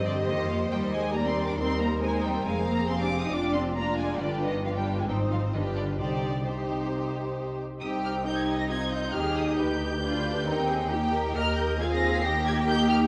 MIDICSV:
0, 0, Header, 1, 6, 480
1, 0, Start_track
1, 0, Key_signature, -3, "minor"
1, 0, Tempo, 437956
1, 777, Time_signature, 4, 2, 24, 8
1, 5584, Tempo, 454201
1, 8464, Tempo, 442152
1, 14164, End_track
2, 0, Start_track
2, 0, Title_t, "Violin section"
2, 0, Program_c, 0, 48
2, 58, Note_on_c, 0, 74, 76
2, 146, Note_off_c, 0, 74, 0
2, 300, Note_on_c, 0, 75, 90
2, 534, Note_off_c, 0, 75, 0
2, 538, Note_on_c, 0, 77, 76
2, 626, Note_off_c, 0, 77, 0
2, 776, Note_on_c, 0, 79, 94
2, 864, Note_off_c, 0, 79, 0
2, 1019, Note_on_c, 0, 80, 92
2, 1251, Note_off_c, 0, 80, 0
2, 1251, Note_on_c, 0, 82, 93
2, 1372, Note_off_c, 0, 82, 0
2, 1377, Note_on_c, 0, 84, 87
2, 1614, Note_off_c, 0, 84, 0
2, 1617, Note_on_c, 0, 86, 89
2, 1730, Note_on_c, 0, 84, 98
2, 1733, Note_off_c, 0, 86, 0
2, 1963, Note_off_c, 0, 84, 0
2, 1972, Note_on_c, 0, 82, 90
2, 2208, Note_off_c, 0, 82, 0
2, 2210, Note_on_c, 0, 80, 92
2, 2445, Note_off_c, 0, 80, 0
2, 2456, Note_on_c, 0, 79, 85
2, 2693, Note_off_c, 0, 79, 0
2, 2701, Note_on_c, 0, 80, 95
2, 2935, Note_off_c, 0, 80, 0
2, 2936, Note_on_c, 0, 82, 90
2, 3167, Note_off_c, 0, 82, 0
2, 3172, Note_on_c, 0, 84, 97
2, 3290, Note_off_c, 0, 84, 0
2, 3303, Note_on_c, 0, 86, 88
2, 3529, Note_on_c, 0, 87, 88
2, 3530, Note_off_c, 0, 86, 0
2, 3640, Note_on_c, 0, 86, 97
2, 3648, Note_off_c, 0, 87, 0
2, 3871, Note_on_c, 0, 84, 86
2, 3884, Note_off_c, 0, 86, 0
2, 3958, Note_off_c, 0, 84, 0
2, 4119, Note_on_c, 0, 82, 91
2, 4353, Note_on_c, 0, 80, 81
2, 4360, Note_off_c, 0, 82, 0
2, 4595, Note_on_c, 0, 74, 81
2, 4599, Note_off_c, 0, 80, 0
2, 4847, Note_off_c, 0, 74, 0
2, 4857, Note_on_c, 0, 75, 79
2, 5094, Note_off_c, 0, 75, 0
2, 5101, Note_on_c, 0, 77, 84
2, 5148, Note_off_c, 0, 77, 0
2, 5227, Note_on_c, 0, 79, 70
2, 5460, Note_off_c, 0, 79, 0
2, 5466, Note_on_c, 0, 80, 69
2, 5513, Note_off_c, 0, 80, 0
2, 5576, Note_on_c, 0, 79, 81
2, 5661, Note_off_c, 0, 79, 0
2, 5814, Note_on_c, 0, 77, 69
2, 5898, Note_off_c, 0, 77, 0
2, 6050, Note_on_c, 0, 75, 69
2, 6134, Note_off_c, 0, 75, 0
2, 6290, Note_on_c, 0, 74, 66
2, 6374, Note_off_c, 0, 74, 0
2, 6531, Note_on_c, 0, 74, 79
2, 7006, Note_off_c, 0, 74, 0
2, 7017, Note_on_c, 0, 72, 62
2, 8225, Note_off_c, 0, 72, 0
2, 8448, Note_on_c, 0, 87, 81
2, 8534, Note_off_c, 0, 87, 0
2, 8703, Note_on_c, 0, 89, 84
2, 8790, Note_off_c, 0, 89, 0
2, 8939, Note_on_c, 0, 91, 89
2, 9060, Note_off_c, 0, 91, 0
2, 9069, Note_on_c, 0, 92, 84
2, 9307, Note_off_c, 0, 92, 0
2, 9308, Note_on_c, 0, 94, 87
2, 9355, Note_off_c, 0, 94, 0
2, 9413, Note_on_c, 0, 92, 98
2, 9655, Note_off_c, 0, 92, 0
2, 9659, Note_on_c, 0, 91, 82
2, 9897, Note_on_c, 0, 89, 91
2, 9899, Note_off_c, 0, 91, 0
2, 10140, Note_on_c, 0, 87, 85
2, 10145, Note_off_c, 0, 89, 0
2, 10388, Note_off_c, 0, 87, 0
2, 10390, Note_on_c, 0, 91, 99
2, 12042, Note_off_c, 0, 91, 0
2, 12303, Note_on_c, 0, 89, 107
2, 12533, Note_off_c, 0, 89, 0
2, 12545, Note_on_c, 0, 91, 93
2, 12789, Note_off_c, 0, 91, 0
2, 12793, Note_on_c, 0, 92, 107
2, 12840, Note_off_c, 0, 92, 0
2, 12924, Note_on_c, 0, 94, 101
2, 13152, Note_off_c, 0, 94, 0
2, 13165, Note_on_c, 0, 96, 98
2, 13260, Note_on_c, 0, 94, 108
2, 13277, Note_off_c, 0, 96, 0
2, 13503, Note_off_c, 0, 94, 0
2, 13511, Note_on_c, 0, 92, 103
2, 13598, Note_off_c, 0, 92, 0
2, 13744, Note_on_c, 0, 91, 114
2, 13972, Note_on_c, 0, 89, 105
2, 13980, Note_off_c, 0, 91, 0
2, 14059, Note_off_c, 0, 89, 0
2, 14164, End_track
3, 0, Start_track
3, 0, Title_t, "Violin section"
3, 0, Program_c, 1, 48
3, 0, Note_on_c, 1, 72, 64
3, 0, Note_on_c, 1, 75, 61
3, 771, Note_off_c, 1, 75, 0
3, 784, Note_on_c, 1, 75, 63
3, 1247, Note_off_c, 1, 75, 0
3, 1256, Note_off_c, 1, 72, 0
3, 1259, Note_on_c, 1, 74, 61
3, 1261, Note_on_c, 1, 70, 67
3, 1732, Note_on_c, 1, 72, 61
3, 1733, Note_off_c, 1, 74, 0
3, 2196, Note_off_c, 1, 72, 0
3, 2209, Note_on_c, 1, 72, 65
3, 2681, Note_off_c, 1, 72, 0
3, 2693, Note_on_c, 1, 77, 62
3, 3135, Note_off_c, 1, 70, 0
3, 3153, Note_off_c, 1, 77, 0
3, 3166, Note_on_c, 1, 77, 57
3, 3169, Note_on_c, 1, 68, 60
3, 3636, Note_off_c, 1, 77, 0
3, 3644, Note_on_c, 1, 74, 59
3, 3645, Note_on_c, 1, 67, 58
3, 3647, Note_off_c, 1, 68, 0
3, 4117, Note_off_c, 1, 74, 0
3, 4126, Note_on_c, 1, 65, 60
3, 4127, Note_off_c, 1, 67, 0
3, 4130, Note_on_c, 1, 74, 60
3, 4602, Note_off_c, 1, 65, 0
3, 4604, Note_off_c, 1, 74, 0
3, 4613, Note_on_c, 1, 71, 58
3, 4616, Note_on_c, 1, 67, 58
3, 5064, Note_off_c, 1, 71, 0
3, 5066, Note_off_c, 1, 67, 0
3, 5104, Note_on_c, 1, 71, 56
3, 5106, Note_on_c, 1, 67, 58
3, 5576, Note_off_c, 1, 71, 0
3, 5577, Note_off_c, 1, 67, 0
3, 5587, Note_on_c, 1, 63, 49
3, 5587, Note_on_c, 1, 72, 54
3, 5671, Note_off_c, 1, 63, 0
3, 5822, Note_on_c, 1, 65, 46
3, 5907, Note_off_c, 1, 65, 0
3, 6055, Note_off_c, 1, 72, 0
3, 6055, Note_on_c, 1, 67, 56
3, 6055, Note_on_c, 1, 71, 57
3, 6523, Note_off_c, 1, 67, 0
3, 6532, Note_off_c, 1, 71, 0
3, 6534, Note_on_c, 1, 67, 54
3, 6534, Note_on_c, 1, 72, 51
3, 7008, Note_off_c, 1, 67, 0
3, 7008, Note_off_c, 1, 72, 0
3, 7020, Note_on_c, 1, 67, 55
3, 7022, Note_on_c, 1, 72, 51
3, 8226, Note_off_c, 1, 67, 0
3, 8227, Note_off_c, 1, 72, 0
3, 8461, Note_on_c, 1, 67, 61
3, 8461, Note_on_c, 1, 79, 57
3, 8911, Note_off_c, 1, 67, 0
3, 8911, Note_off_c, 1, 79, 0
3, 8939, Note_on_c, 1, 75, 63
3, 8940, Note_on_c, 1, 67, 60
3, 9413, Note_off_c, 1, 67, 0
3, 9424, Note_on_c, 1, 65, 58
3, 9898, Note_on_c, 1, 67, 67
3, 9907, Note_off_c, 1, 65, 0
3, 10388, Note_off_c, 1, 67, 0
3, 10390, Note_off_c, 1, 75, 0
3, 10391, Note_on_c, 1, 71, 60
3, 10396, Note_off_c, 1, 71, 0
3, 10396, Note_on_c, 1, 71, 66
3, 10862, Note_off_c, 1, 71, 0
3, 10875, Note_on_c, 1, 71, 66
3, 10878, Note_on_c, 1, 74, 62
3, 11345, Note_off_c, 1, 71, 0
3, 11347, Note_off_c, 1, 74, 0
3, 11348, Note_on_c, 1, 70, 70
3, 11354, Note_on_c, 1, 79, 63
3, 11584, Note_on_c, 1, 68, 69
3, 11593, Note_off_c, 1, 70, 0
3, 11805, Note_off_c, 1, 79, 0
3, 11817, Note_on_c, 1, 67, 79
3, 11818, Note_on_c, 1, 79, 74
3, 11831, Note_off_c, 1, 68, 0
3, 12065, Note_on_c, 1, 70, 72
3, 12067, Note_off_c, 1, 67, 0
3, 12299, Note_off_c, 1, 79, 0
3, 12306, Note_on_c, 1, 75, 68
3, 12785, Note_on_c, 1, 68, 74
3, 12789, Note_off_c, 1, 70, 0
3, 12789, Note_off_c, 1, 75, 0
3, 12793, Note_on_c, 1, 77, 72
3, 13255, Note_on_c, 1, 67, 75
3, 13255, Note_on_c, 1, 79, 77
3, 13256, Note_off_c, 1, 68, 0
3, 13270, Note_off_c, 1, 77, 0
3, 13728, Note_off_c, 1, 67, 0
3, 13741, Note_on_c, 1, 67, 78
3, 14164, Note_off_c, 1, 67, 0
3, 14164, Note_off_c, 1, 79, 0
3, 14164, End_track
4, 0, Start_track
4, 0, Title_t, "Viola section"
4, 0, Program_c, 2, 48
4, 0, Note_on_c, 2, 60, 65
4, 0, Note_on_c, 2, 67, 67
4, 301, Note_off_c, 2, 60, 0
4, 305, Note_on_c, 2, 58, 63
4, 762, Note_off_c, 2, 58, 0
4, 763, Note_off_c, 2, 67, 0
4, 776, Note_on_c, 2, 58, 56
4, 776, Note_on_c, 2, 67, 61
4, 1243, Note_off_c, 2, 58, 0
4, 1251, Note_on_c, 2, 55, 58
4, 1711, Note_off_c, 2, 67, 0
4, 1719, Note_off_c, 2, 55, 0
4, 1733, Note_on_c, 2, 55, 67
4, 1735, Note_on_c, 2, 63, 63
4, 2194, Note_off_c, 2, 63, 0
4, 2198, Note_off_c, 2, 55, 0
4, 2205, Note_on_c, 2, 60, 60
4, 2207, Note_on_c, 2, 63, 61
4, 2680, Note_off_c, 2, 60, 0
4, 2680, Note_off_c, 2, 63, 0
4, 2692, Note_on_c, 2, 68, 52
4, 2693, Note_on_c, 2, 60, 59
4, 3161, Note_off_c, 2, 68, 0
4, 3172, Note_on_c, 2, 67, 60
4, 3630, Note_off_c, 2, 60, 0
4, 3641, Note_on_c, 2, 62, 62
4, 3643, Note_on_c, 2, 65, 64
4, 3649, Note_off_c, 2, 67, 0
4, 4111, Note_off_c, 2, 65, 0
4, 4112, Note_off_c, 2, 62, 0
4, 4124, Note_on_c, 2, 65, 60
4, 4125, Note_on_c, 2, 62, 57
4, 4594, Note_off_c, 2, 62, 0
4, 4597, Note_off_c, 2, 65, 0
4, 4607, Note_on_c, 2, 62, 56
4, 4610, Note_on_c, 2, 65, 53
4, 5061, Note_off_c, 2, 62, 0
4, 5063, Note_off_c, 2, 65, 0
4, 5093, Note_on_c, 2, 62, 59
4, 5098, Note_on_c, 2, 65, 58
4, 5571, Note_off_c, 2, 62, 0
4, 5573, Note_off_c, 2, 65, 0
4, 5584, Note_on_c, 2, 63, 59
4, 5587, Note_on_c, 2, 60, 57
4, 6044, Note_off_c, 2, 63, 0
4, 6050, Note_on_c, 2, 65, 50
4, 6053, Note_on_c, 2, 62, 54
4, 6055, Note_off_c, 2, 60, 0
4, 6530, Note_off_c, 2, 65, 0
4, 6531, Note_off_c, 2, 62, 0
4, 6532, Note_on_c, 2, 67, 49
4, 6533, Note_on_c, 2, 63, 46
4, 7007, Note_off_c, 2, 63, 0
4, 7008, Note_off_c, 2, 67, 0
4, 7020, Note_on_c, 2, 63, 56
4, 7020, Note_on_c, 2, 67, 53
4, 8226, Note_off_c, 2, 63, 0
4, 8226, Note_off_c, 2, 67, 0
4, 8465, Note_on_c, 2, 63, 55
4, 8466, Note_on_c, 2, 60, 54
4, 8913, Note_off_c, 2, 63, 0
4, 8914, Note_off_c, 2, 60, 0
4, 8938, Note_on_c, 2, 63, 59
4, 8939, Note_on_c, 2, 60, 62
4, 9404, Note_off_c, 2, 63, 0
4, 9405, Note_off_c, 2, 60, 0
4, 9417, Note_on_c, 2, 63, 67
4, 9418, Note_on_c, 2, 60, 63
4, 9894, Note_off_c, 2, 60, 0
4, 9903, Note_on_c, 2, 67, 63
4, 10382, Note_off_c, 2, 67, 0
4, 10395, Note_on_c, 2, 67, 62
4, 10842, Note_off_c, 2, 63, 0
4, 10869, Note_on_c, 2, 62, 64
4, 11342, Note_off_c, 2, 62, 0
4, 11350, Note_on_c, 2, 60, 67
4, 11809, Note_off_c, 2, 67, 0
4, 11834, Note_off_c, 2, 60, 0
4, 11836, Note_on_c, 2, 63, 68
4, 11838, Note_on_c, 2, 58, 68
4, 12295, Note_off_c, 2, 58, 0
4, 12308, Note_on_c, 2, 58, 61
4, 12310, Note_on_c, 2, 67, 63
4, 12317, Note_off_c, 2, 63, 0
4, 12781, Note_off_c, 2, 58, 0
4, 12781, Note_off_c, 2, 67, 0
4, 12788, Note_on_c, 2, 60, 70
4, 12789, Note_on_c, 2, 65, 70
4, 13258, Note_off_c, 2, 65, 0
4, 13258, Note_on_c, 2, 63, 74
4, 13261, Note_on_c, 2, 58, 85
4, 13268, Note_off_c, 2, 60, 0
4, 13732, Note_off_c, 2, 63, 0
4, 13745, Note_on_c, 2, 63, 76
4, 14164, Note_off_c, 2, 58, 0
4, 14164, Note_off_c, 2, 63, 0
4, 14164, End_track
5, 0, Start_track
5, 0, Title_t, "Cello section"
5, 0, Program_c, 3, 48
5, 67, Note_on_c, 3, 50, 65
5, 299, Note_off_c, 3, 50, 0
5, 306, Note_on_c, 3, 51, 74
5, 541, Note_on_c, 3, 53, 69
5, 542, Note_off_c, 3, 51, 0
5, 776, Note_on_c, 3, 55, 78
5, 778, Note_off_c, 3, 53, 0
5, 1009, Note_off_c, 3, 55, 0
5, 1021, Note_on_c, 3, 56, 71
5, 1253, Note_on_c, 3, 58, 77
5, 1256, Note_off_c, 3, 56, 0
5, 1370, Note_off_c, 3, 58, 0
5, 1371, Note_on_c, 3, 60, 72
5, 1611, Note_off_c, 3, 60, 0
5, 1612, Note_on_c, 3, 62, 74
5, 1659, Note_off_c, 3, 62, 0
5, 1737, Note_on_c, 3, 60, 84
5, 1966, Note_off_c, 3, 60, 0
5, 1968, Note_on_c, 3, 58, 73
5, 2206, Note_off_c, 3, 58, 0
5, 2207, Note_on_c, 3, 56, 78
5, 2443, Note_off_c, 3, 56, 0
5, 2446, Note_on_c, 3, 55, 72
5, 2688, Note_off_c, 3, 55, 0
5, 2689, Note_on_c, 3, 56, 76
5, 2929, Note_off_c, 3, 56, 0
5, 2929, Note_on_c, 3, 58, 74
5, 3164, Note_off_c, 3, 58, 0
5, 3165, Note_on_c, 3, 60, 78
5, 3286, Note_off_c, 3, 60, 0
5, 3286, Note_on_c, 3, 62, 73
5, 3373, Note_off_c, 3, 62, 0
5, 3531, Note_on_c, 3, 63, 70
5, 3645, Note_on_c, 3, 62, 83
5, 3647, Note_off_c, 3, 63, 0
5, 3884, Note_on_c, 3, 60, 69
5, 3886, Note_off_c, 3, 62, 0
5, 4126, Note_off_c, 3, 60, 0
5, 4128, Note_on_c, 3, 58, 73
5, 4367, Note_on_c, 3, 56, 69
5, 4370, Note_off_c, 3, 58, 0
5, 4605, Note_on_c, 3, 50, 66
5, 4612, Note_off_c, 3, 56, 0
5, 4847, Note_off_c, 3, 50, 0
5, 4853, Note_on_c, 3, 51, 63
5, 5091, Note_on_c, 3, 53, 68
5, 5096, Note_off_c, 3, 51, 0
5, 5211, Note_on_c, 3, 55, 66
5, 5215, Note_off_c, 3, 53, 0
5, 5457, Note_off_c, 3, 55, 0
5, 5458, Note_on_c, 3, 56, 61
5, 5507, Note_off_c, 3, 56, 0
5, 5582, Note_on_c, 3, 55, 65
5, 5666, Note_off_c, 3, 55, 0
5, 5814, Note_on_c, 3, 53, 59
5, 5899, Note_off_c, 3, 53, 0
5, 6048, Note_on_c, 3, 51, 59
5, 6132, Note_off_c, 3, 51, 0
5, 6290, Note_on_c, 3, 50, 56
5, 6522, Note_off_c, 3, 50, 0
5, 6535, Note_on_c, 3, 50, 59
5, 7008, Note_off_c, 3, 50, 0
5, 7020, Note_on_c, 3, 48, 49
5, 8227, Note_off_c, 3, 48, 0
5, 8462, Note_on_c, 3, 67, 66
5, 8912, Note_off_c, 3, 67, 0
5, 8945, Note_on_c, 3, 63, 72
5, 9888, Note_off_c, 3, 63, 0
5, 9909, Note_on_c, 3, 68, 77
5, 10384, Note_off_c, 3, 68, 0
5, 10393, Note_on_c, 3, 67, 64
5, 10872, Note_on_c, 3, 65, 69
5, 10875, Note_off_c, 3, 67, 0
5, 11344, Note_off_c, 3, 65, 0
5, 11349, Note_on_c, 3, 63, 66
5, 11824, Note_off_c, 3, 63, 0
5, 11827, Note_on_c, 3, 67, 73
5, 12310, Note_on_c, 3, 70, 80
5, 12313, Note_off_c, 3, 67, 0
5, 12789, Note_on_c, 3, 68, 78
5, 12791, Note_off_c, 3, 70, 0
5, 13261, Note_on_c, 3, 67, 85
5, 13268, Note_off_c, 3, 68, 0
5, 14164, Note_off_c, 3, 67, 0
5, 14164, End_track
6, 0, Start_track
6, 0, Title_t, "Double bass section"
6, 0, Program_c, 4, 48
6, 0, Note_on_c, 4, 43, 62
6, 301, Note_off_c, 4, 43, 0
6, 306, Note_on_c, 4, 41, 60
6, 780, Note_off_c, 4, 41, 0
6, 780, Note_on_c, 4, 39, 69
6, 1713, Note_off_c, 4, 39, 0
6, 1728, Note_on_c, 4, 39, 64
6, 2669, Note_off_c, 4, 39, 0
6, 2691, Note_on_c, 4, 29, 71
6, 3629, Note_off_c, 4, 29, 0
6, 3646, Note_on_c, 4, 29, 61
6, 4593, Note_off_c, 4, 29, 0
6, 4607, Note_on_c, 4, 31, 65
6, 5536, Note_off_c, 4, 31, 0
6, 5582, Note_on_c, 4, 32, 58
6, 6052, Note_off_c, 4, 32, 0
6, 6054, Note_on_c, 4, 31, 53
6, 6532, Note_off_c, 4, 31, 0
6, 6533, Note_on_c, 4, 36, 54
6, 8250, Note_off_c, 4, 36, 0
6, 8460, Note_on_c, 4, 36, 65
6, 9863, Note_off_c, 4, 36, 0
6, 9907, Note_on_c, 4, 39, 62
6, 10392, Note_on_c, 4, 38, 72
6, 10393, Note_off_c, 4, 39, 0
6, 11348, Note_on_c, 4, 39, 72
6, 11354, Note_off_c, 4, 38, 0
6, 12299, Note_off_c, 4, 39, 0
6, 12312, Note_on_c, 4, 39, 81
6, 14164, Note_off_c, 4, 39, 0
6, 14164, End_track
0, 0, End_of_file